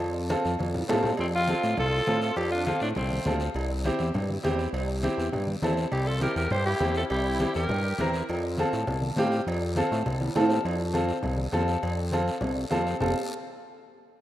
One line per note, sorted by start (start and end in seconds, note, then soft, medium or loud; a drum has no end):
0.00 0.35 F2 loud
0.00 cowbell loud
0.00 high conga soft
0.00 long guiro medium
0.30 0.50 C4 medium
0.30 0.51 F4 medium
0.30 0.51 A4 medium
0.30 cowbell medium
0.30 high conga loud
0.30 short guiro medium
0.45 0.57 F2 medium
0.45 short guiro medium
0.59 0.83 F2 loud
0.59 cowbell medium
0.59 high conga medium
0.59 long guiro medium
0.74 low conga medium
0.74 high timbale medium
0.88 1.13 A2 medium
0.88 1.09 C4 medium
0.88 1.10 F4 medium
0.88 1.10 A4 medium
0.88 cowbell medium
0.88 low conga medium
0.88 low timbale medium
0.88 short guiro medium
1.03 low conga medium
1.03 low timbale medium
1.03 short guiro medium
1.17 1.54 F2 loud
1.17 1.25 A3 medium
1.17 1.27 C4 medium
1.17 cowbell loud
1.17 long guiro medium
1.35 1.75 C4 medium
1.35 1.76 F4 loud
1.48 1.69 C4 medium
1.48 1.69 F4 medium
1.48 1.69 A4 medium
1.48 cowbell medium
1.48 high conga medium
1.48 short guiro medium
1.63 1.75 A2 loud
1.63 short guiro medium
1.77 2.01 C2 loud
1.77 2.19 F4 medium
1.77 2.20 A4 loud
1.77 cowbell medium
1.77 low conga medium
1.77 long guiro medium
2.07 2.31 A2 medium
2.07 2.28 C4 medium
2.07 2.28 F4 medium
2.07 2.28 A4 medium
2.07 cowbell medium
2.07 high conga medium
2.07 short guiro medium
2.22 2.37 F4 medium
2.22 2.36 A4 medium
2.22 short guiro medium
2.36 2.72 F2 loud
2.36 2.51 C4 medium
2.36 2.50 G4 loud
2.36 cowbell loud
2.36 long guiro medium
2.52 2.66 D4 medium
2.52 2.65 F4 loud
2.66 2.88 C4 medium
2.66 2.81 C4 medium
2.66 2.80 F4 medium
2.66 2.88 F4 medium
2.66 2.88 A4 medium
2.66 cowbell medium
2.66 high conga medium
2.66 short guiro medium
2.80 2.93 A2 loud
2.80 2.88 A#3 medium
2.80 2.89 D4 medium
2.80 short guiro medium
2.95 3.20 C2 medium
2.95 3.38 A3 medium
2.95 3.38 C4 medium
2.95 cowbell medium
2.95 low conga medium
2.95 long guiro medium
3.11 high conga medium
3.25 3.49 D2 medium
3.25 3.47 C4 medium
3.25 3.47 F4 medium
3.25 3.47 A4 medium
3.25 cowbell medium
3.25 high conga medium
3.25 low conga medium
3.25 low timbale medium
3.25 short guiro medium
3.40 short guiro medium
3.54 3.91 C2 loud
3.54 cowbell loud
3.54 long guiro medium
3.84 4.06 C4 medium
3.84 4.06 E4 medium
3.84 4.06 G4 medium
3.84 cowbell medium
3.84 high conga medium
3.84 short guiro medium
3.99 4.12 E2 loud
3.99 short guiro medium
4.14 4.38 G2 medium
4.14 cowbell medium
4.14 low conga medium
4.14 long guiro medium
4.30 high conga medium
4.43 4.68 E2 medium
4.43 4.65 C4 medium
4.43 4.64 E4 medium
4.43 4.65 G4 loud
4.43 cowbell medium
4.43 high conga medium
4.43 low timbale medium
4.43 short guiro medium
4.59 short guiro medium
4.73 5.09 C2 loud
4.73 cowbell loud
4.73 long guiro medium
5.03 5.24 C4 medium
5.03 5.24 E4 medium
5.03 5.24 G4 medium
5.03 cowbell medium
5.03 high conga medium
5.03 short guiro medium
5.18 5.30 E2 loud
5.18 short guiro medium
5.33 5.56 G2 loud
5.33 cowbell medium
5.33 low conga medium
5.33 long guiro medium
5.47 high conga medium
5.62 5.86 E2 medium
5.62 5.83 C4 medium
5.62 5.83 E4 medium
5.62 5.84 A4 medium
5.62 cowbell medium
5.62 high conga medium
5.62 low timbale medium
5.62 short guiro medium
5.77 short guiro medium
5.92 6.27 C2 loud
5.92 6.06 E4 medium
5.92 6.08 G4 medium
5.92 cowbell loud
5.92 long guiro medium
6.05 6.21 F4 medium
6.05 6.22 A4 medium
6.20 6.42 C4 medium
6.20 6.42 E4 medium
6.20 6.35 G4 medium
6.20 6.42 G4 medium
6.20 6.36 A#4 medium
6.20 cowbell medium
6.20 high conga medium
6.20 short guiro medium
6.36 6.48 E2 medium
6.36 6.49 G4 medium
6.36 6.53 A#4 loud
6.36 short guiro medium
6.50 6.75 G2 loud
6.50 6.66 G4 medium
6.50 6.65 C5 loud
6.50 cowbell medium
6.50 low conga medium
6.50 long guiro medium
6.66 6.93 E4 medium
6.66 6.93 G4 loud
6.80 7.04 E2 medium
6.80 7.01 C4 medium
6.80 7.01 E4 medium
6.80 7.01 G4 medium
6.80 cowbell medium
6.80 high conga medium
6.80 low timbale medium
6.80 short guiro medium
6.95 7.02 F4 medium
6.95 7.03 A4 medium
6.95 short guiro medium
7.10 7.46 C2 loud
7.10 7.52 E4 medium
7.10 7.52 G4 medium
7.10 cowbell loud
7.10 long guiro medium
7.39 7.60 C4 medium
7.39 7.61 E4 medium
7.39 7.61 G4 medium
7.39 cowbell medium
7.39 high conga medium
7.39 short guiro medium
7.54 7.67 E2 loud
7.54 8.11 G4 medium
7.54 8.10 A#4 medium
7.54 short guiro medium
7.69 7.93 G2 medium
7.69 cowbell medium
7.69 low conga medium
7.69 long guiro medium
7.98 8.23 E2 medium
7.98 8.20 C4 medium
7.98 8.20 E4 medium
7.98 8.20 A#4 medium
7.98 cowbell medium
7.98 high conga medium
7.98 low conga medium
7.98 short guiro medium
8.14 short guiro medium
8.29 8.65 F2 loud
8.29 cowbell loud
8.29 long guiro medium
8.57 8.79 C4 medium
8.57 8.79 F4 medium
8.57 8.79 A4 loud
8.57 cowbell medium
8.57 high conga medium
8.57 short guiro medium
8.73 8.85 A2 medium
8.73 short guiro medium
8.87 9.11 C2 medium
8.87 cowbell medium
8.87 low conga medium
8.87 long guiro medium
9.02 high conga medium
9.16 9.41 A2 medium
9.16 9.38 C4 medium
9.16 9.38 F4 medium
9.16 9.38 G4 loud
9.16 cowbell medium
9.16 high conga medium
9.16 low timbale medium
9.16 short guiro medium
9.32 short guiro medium
9.47 9.82 F2 loud
9.47 cowbell loud
9.47 long guiro medium
9.76 9.97 C4 medium
9.76 9.97 F4 medium
9.76 9.98 A4 loud
9.76 cowbell medium
9.76 high conga medium
9.76 short guiro medium
9.92 10.03 A2 loud
9.92 short guiro medium
10.06 10.30 C2 medium
10.06 cowbell medium
10.06 low conga medium
10.06 long guiro medium
10.21 high conga medium
10.21 high timbale medium
10.35 10.60 A2 medium
10.35 10.56 C4 medium
10.35 10.56 F4 medium
10.35 10.56 A4 loud
10.35 cowbell medium
10.35 high conga medium
10.35 high timbale loud
10.35 short guiro medium
10.50 low timbale medium
10.50 short guiro medium
10.65 11.12 F2 loud
10.65 cowbell loud
10.65 long guiro medium
10.93 11.15 C4 medium
10.93 11.15 F4 medium
10.93 11.15 A4 medium
10.93 cowbell medium
10.93 high conga medium
10.93 short guiro medium
11.09 short guiro medium
11.23 11.48 C2 medium
11.23 cowbell medium
11.23 low conga medium
11.23 long guiro medium
11.37 high conga medium
11.52 11.77 F2 loud
11.52 11.73 C4 medium
11.52 11.74 F4 medium
11.52 11.74 A4 medium
11.52 cowbell medium
11.52 high conga medium
11.52 low timbale medium
11.52 short guiro medium
11.68 short guiro medium
11.83 12.30 F2 medium
11.83 cowbell loud
11.83 long guiro medium
12.12 12.33 C4 medium
12.12 12.33 F4 medium
12.12 12.33 A4 medium
12.12 cowbell medium
12.12 high conga medium
12.12 short guiro medium
12.28 short guiro medium
12.41 12.65 C2 loud
12.41 cowbell medium
12.41 low conga medium
12.41 long guiro medium
12.70 12.95 F2 loud
12.70 12.92 C4 medium
12.70 12.92 F4 medium
12.70 12.92 A4 medium
12.70 cowbell medium
12.70 high conga medium
12.70 low timbale medium
12.70 short guiro medium
12.87 short guiro medium
13.01 13.15 F1 medium
13.01 13.15 C4 medium
13.01 13.15 F4 medium
13.01 13.15 A4 medium
13.01 low conga medium
13.01 low timbale medium
13.01 long guiro loud